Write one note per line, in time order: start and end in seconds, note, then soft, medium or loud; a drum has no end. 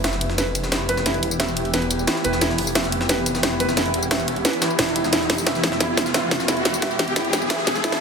0.00 1.22 F1 loud
0.00 8.00 E3 medium
0.00 8.00 B3 medium
0.00 8.00 E4 medium
0.00 8.00 G4 medium
0.00 riser medium
0.04 0.16 E5 medium
0.04 snare loud
0.04 snare soft
0.04 closed hi-hat medium
0.04 ride medium
0.04 tambourine soft
0.13 snare soft
0.13 tambourine soft
0.21 closed hi-hat medium
0.21 ride medium
0.30 snare soft
0.38 0.50 B4 medium
0.38 snare soft
0.38 closed hi-hat medium
0.38 ride medium
0.38 tambourine soft
0.55 closed hi-hat medium
0.55 ride medium
0.55 tambourine medium
0.63 snare soft
0.63 tambourine soft
0.72 0.88 E4 medium
0.72 snare loud
0.72 snare medium
0.72 closed hi-hat medium
0.72 ride medium
0.72 tambourine soft
0.89 1.05 B4 loud
0.89 closed hi-hat medium
0.89 ride medium
0.89 tambourine soft
0.97 snare soft
0.97 tambourine soft
1.06 1.18 E4 loud
1.06 snare soft
1.06 closed hi-hat medium
1.06 ride medium
1.06 tambourine soft
1.14 ride soft
1.23 1.72 E1 loud
1.23 closed hi-hat medium
1.23 ride medium
1.31 tambourine medium
1.40 1.52 E5 medium
1.40 snare loud
1.40 snare medium
1.40 closed hi-hat loud
1.40 ride medium
1.40 tambourine soft
1.48 tambourine soft
1.57 closed hi-hat medium
1.57 ride medium
1.65 ride soft
1.74 2.06 E1 loud
1.74 1.85 B4 medium
1.74 snare medium
1.74 closed hi-hat medium
1.74 ride medium
1.74 tambourine soft
1.82 ride soft
1.90 closed hi-hat medium
1.90 ride medium
1.90 tambourine medium
1.99 tambourine soft
2.07 2.24 E4 medium
2.07 snare loud
2.07 snare medium
2.07 closed hi-hat medium
2.07 ride medium
2.07 tambourine soft
2.16 snare soft
2.24 2.40 E1 loud
2.24 2.41 B4 loud
2.24 closed hi-hat medium
2.24 ride medium
2.24 tambourine soft
2.33 snare soft
2.33 tambourine soft
2.41 2.57 E1 loud
2.41 2.53 E4 loud
2.41 snare medium
2.41 closed hi-hat medium
2.41 ride medium
2.41 tambourine soft
2.50 snare soft
2.58 3.93 F1 loud
2.58 closed hi-hat medium
2.58 open hi-hat medium
2.67 tambourine medium
2.75 2.87 E5 medium
2.75 snare loud
2.75 snare medium
2.75 closed hi-hat medium
2.75 ride medium
2.75 tambourine soft
2.84 snare soft
2.84 tambourine soft
2.92 closed hi-hat medium
2.92 ride medium
3.01 snare medium
3.09 3.21 B4 medium
3.09 snare medium
3.09 closed hi-hat medium
3.09 ride medium
3.09 tambourine soft
3.26 closed hi-hat medium
3.26 ride medium
3.26 tambourine medium
3.35 snare soft
3.35 tambourine soft
3.43 3.59 E4 medium
3.43 snare loud
3.43 snare medium
3.43 closed hi-hat medium
3.43 ride medium
3.43 tambourine soft
3.60 3.76 B4 loud
3.60 closed hi-hat medium
3.60 ride medium
3.60 tambourine soft
3.69 snare soft
3.69 tambourine soft
3.77 3.89 E4 loud
3.77 snare medium
3.77 closed hi-hat medium
3.77 ride medium
3.77 tambourine soft
3.86 ride soft
3.94 4.43 E1 loud
3.94 closed hi-hat medium
3.94 ride medium
4.03 tambourine medium
4.11 4.23 E5 medium
4.11 snare loud
4.11 snare medium
4.11 closed hi-hat medium
4.11 ride medium
4.11 tambourine medium
4.19 tambourine soft
4.28 closed hi-hat medium
4.28 ride medium
4.36 ride soft
4.45 4.57 B4 medium
4.45 snare medium
4.45 closed hi-hat medium
4.45 ride medium
4.45 tambourine soft
4.53 ride soft
4.62 4.74 E4 medium
4.62 snare loud
4.62 closed hi-hat medium
4.62 ride medium
4.62 tambourine medium
4.70 tambourine soft
4.79 5.11 E1 loud
4.79 4.91 E4 medium
4.79 snare loud
4.79 snare medium
4.79 closed hi-hat medium
4.79 ride medium
4.79 tambourine soft
4.87 snare soft
4.96 5.07 E4 medium
4.96 closed hi-hat medium
4.96 ride medium
4.96 tambourine soft
5.04 snare soft
5.04 tambourine soft
5.12 5.28 E1 loud
5.12 5.24 E4 medium
5.12 snare medium
5.12 closed hi-hat medium
5.12 ride medium
5.12 tambourine soft
5.21 snare soft
5.30 6.64 F1 loud
5.30 snare medium
5.30 closed hi-hat medium
5.30 open hi-hat medium
5.38 tambourine medium
5.46 5.58 E5 medium
5.46 snare loud
5.46 snare medium
5.46 closed hi-hat medium
5.46 ride medium
5.46 tambourine soft
5.55 snare soft
5.55 tambourine soft
5.63 snare medium
5.63 closed hi-hat medium
5.63 ride medium
5.72 snare soft
5.80 5.92 E4 medium
5.80 snare medium
5.80 closed hi-hat medium
5.80 ride medium
5.80 tambourine soft
5.97 snare medium
5.97 closed hi-hat medium
5.97 ride medium
5.97 tambourine medium
6.06 snare soft
6.06 tambourine soft
6.14 6.26 E5 medium
6.14 snare loud
6.14 snare medium
6.14 closed hi-hat medium
6.14 ride medium
6.14 tambourine soft
6.31 snare medium
6.31 closed hi-hat medium
6.31 ride medium
6.31 tambourine soft
6.40 snare soft
6.40 tambourine soft
6.48 6.60 E4 loud
6.48 snare medium
6.48 closed hi-hat medium
6.48 ride medium
6.48 tambourine soft
6.57 ride soft
6.65 7.15 E1 loud
6.65 snare medium
6.65 closed hi-hat medium
6.65 ride medium
6.74 tambourine medium
6.82 6.94 E5 medium
6.82 snare loud
6.82 snare medium
6.82 closed hi-hat medium
6.82 ride medium
6.82 tambourine medium
6.91 tambourine soft
6.99 snare medium
6.99 closed hi-hat medium
6.99 ride medium
7.08 ride soft
7.16 7.49 E1 loud
7.16 7.28 E4 loud
7.16 snare medium
7.16 closed hi-hat medium
7.16 ride medium
7.16 tambourine soft
7.25 ride soft
7.33 snare medium
7.33 closed hi-hat medium
7.33 ride medium
7.33 tambourine medium
7.42 tambourine soft
7.50 7.62 E5 medium
7.50 snare loud
7.50 snare medium
7.50 closed hi-hat medium
7.50 ride medium
7.50 tambourine medium
7.58 snare soft
7.67 7.83 E1 loud
7.67 snare medium
7.67 closed hi-hat medium
7.67 ride medium
7.67 tambourine soft
7.75 snare soft
7.75 tambourine soft
7.84 7.99 E1 loud
7.84 7.96 E4 loud
7.84 snare medium
7.84 closed hi-hat medium
7.84 ride medium
7.84 tambourine medium
7.92 snare medium
7.92 snare soft